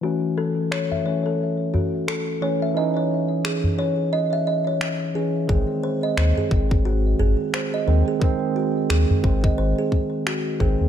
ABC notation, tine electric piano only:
X:1
M:4/4
L:1/8
Q:"Swing 16ths" 1/4=88
K:none
V:1 name="Tine electric piano" clef=bass
[E,A,^C]3 [E,A,C]4 [E,A,C] | [E,^C^D]3 [E,C]4 [E,C] | [^D,^G,^B,]3 [D,G,B,]4 [D,G,B,] | [^D,^G,^B,]3 [D,G,B,]4 [D,G,B,] |]